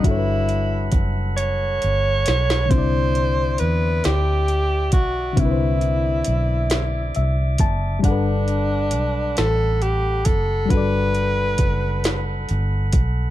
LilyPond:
<<
  \new Staff \with { instrumentName = "Tonewheel organ" } { \time 6/8 \key c \lydian \tempo 4. = 45 <a' fis'' b''>2. | <d'' e'' d'''>2.~ | <d'' e'' d'''>2. | <a' fis'' b''>2.~ |
<a' fis'' b''>2. | }
  \new Staff \with { instrumentName = "Tenor saxophone" } { \time 6/8 \key c \lydian e'4 r8 des''4. | c''4 b'8 g'4 fis'8 | e'2~ e'8 r8 | d'4. a'8 g'8 a'8 |
b'2 r4 | }
  \new Staff \with { instrumentName = "Reed electric piano" } { \time 6/8 \key c \lydian << { r2. | r2. | r2 e''8 a''8 | r2. |
r2. | } \\ { <g d' fis' a' b' des''>2. | <d c' d' e' d''>2. | <d c' d' e' b' c''>2. | <g d' a' b' fis''>2. |
<g d' fis' a' d''>2. | } >> }
  \new Staff \with { instrumentName = "Fingered electric bass" } { \clef bass \time 6/8 \key c \lydian g,,4 fis,,4 g,,8 b,,8 | c,4 e,8 d,4 b,,8 | c,4 b,,4 c,8 fis,,8 | g,,4 b,,8 a,,4 fis,,8 |
g,,4 fis,,4 g,,8 b,,8 | }
  \new DrumStaff \with { instrumentName = "Drums" } \drummode { \time 6/8 <hh bd>8 hh8 <hh bd>8 hh8 hh8 <hh sn>16 sn16 | <hh bd>8 hh8 hh8 <hh sn>8 hh8 <hh bd>8 | <hh bd>8 hh8 hh8 <hh sn>8 hh8 <hh bd>8 | <hh bd>8 hh8 hh8 <hh sn>8 hh8 <hh bd>8 |
<hh bd>8 hh8 <hh bd>8 <hh sn>8 hh8 <hh bd>8 | }
>>